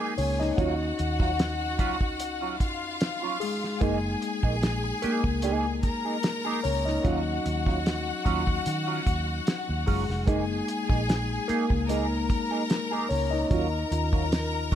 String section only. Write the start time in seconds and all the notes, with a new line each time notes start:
Already playing: G#4 G#5
0.58 F#4 F#5
2.61 F4 F5
3.82 G#4 G#5
5.84 A#4 A#5
7.05 F#4 F#5
10.27 G#4 G#5
11.89 A#4 A#5
13.52 A#4 A#5